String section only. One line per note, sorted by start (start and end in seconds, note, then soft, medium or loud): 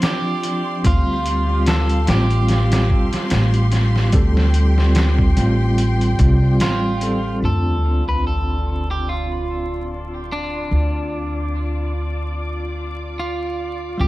0.00 0.80 F4 medium
0.00 0.80 D5 medium
0.00 0.80 C6 medium
0.84 7.38 G4 medium
0.84 4.10 F5 medium
0.84 7.38 C6 medium
4.13 7.39 G5 medium
7.42 13.96 F4 medium
7.42 13.96 D5 medium
7.42 10.68 C6 medium
10.71 13.96 D6 medium
13.99 14.08 G4 medium
13.99 14.08 F5 medium
13.99 14.08 C6 medium